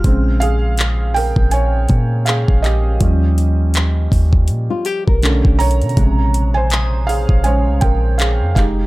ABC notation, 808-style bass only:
X:1
M:4/4
L:1/16
Q:"Swing 16ths" 1/4=81
K:Bbdor
V:1 name="808-style bass" clef=bass
B,,,6- B,,, B,,,3 B,,3 B,,,3 | E,,6 E,,2 B,, z2 _C,,2 =B,,,2 =B,, | B,,,6- B,,, B,,,2 C,, B,,,3 F,, F,,,2 |]